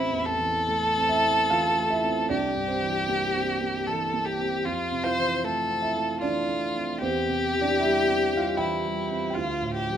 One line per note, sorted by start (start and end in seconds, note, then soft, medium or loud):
0.00 2.26 A1 medium
0.00 0.96 C4 medium
0.00 0.27 E4 medium
0.00 1.10 C5 medium
0.12 0.58 E2 soft
0.26 2.29 A4 loud
0.40 0.85 E3 soft
0.69 1.13 A3 medium
0.98 1.40 C4 medium
1.09 1.48 E4 medium
1.09 1.50 E5 loud
1.25 1.67 A3 soft
1.50 1.93 E3 soft
1.50 1.88 F4 medium
1.50 1.90 F5 loud
1.78 2.20 A3 soft
1.91 2.27 E4 medium
1.91 2.29 E5 loud
2.04 2.30 C4 medium
2.29 4.61 C2 medium
2.29 2.65 D4 medium
2.29 3.88 G4 medium
2.29 2.68 D5 medium
2.56 2.97 G2 soft
2.67 3.33 C4 medium
2.67 4.25 C5 medium
2.82 3.23 E3 soft
3.08 3.50 A#3 soft
3.35 3.77 C4 medium
3.61 4.03 A#3 soft
3.87 4.29 E3 soft
3.87 4.27 A4 medium
4.14 4.55 A#3 soft
4.25 4.67 G4 medium
4.40 4.65 C4 medium
4.65 6.97 F2 medium
4.65 5.05 F4 medium
4.92 5.34 C3 soft
5.03 5.79 F4 medium
5.03 5.46 C5 medium
5.03 5.82 F5 medium
5.18 5.60 E3 soft
5.44 5.85 A3 soft
5.44 6.20 A4 medium
5.71 6.11 C4 medium
5.82 6.19 E4 medium
5.82 6.21 E5 medium
5.97 6.38 A3 soft
6.20 6.64 E3 soft
6.20 6.98 D4 medium
6.20 6.99 F4 medium
6.20 7.01 D5 medium
6.49 6.91 A3 soft
6.76 7.01 C4 soft
7.00 9.32 E2 medium
7.00 7.57 C4 medium
7.00 8.59 G4 loud
7.00 7.60 C5 medium
7.29 7.70 C3 soft
7.55 7.96 E3 soft
7.61 7.79 D4 medium
7.61 7.80 D5 medium
7.80 8.22 G3 soft
7.80 8.35 E4 medium
7.80 8.38 E5 medium
8.06 8.48 C4 soft
8.32 8.74 G3 soft
8.37 8.56 F4 medium
8.37 8.57 F5 medium
8.57 9.00 E3 soft
8.57 9.35 E4 medium
8.57 9.25 G4 medium
8.57 9.28 G5 medium
8.85 9.26 G3 soft
9.11 9.36 C4 soft
9.30 9.73 F4 medium
9.30 9.36 G5 medium
9.35 9.97 D2 medium
9.35 9.97 F4 medium
9.35 9.97 F5 medium
9.62 9.97 A2 soft
9.74 9.97 G4 medium
9.89 9.97 F3 soft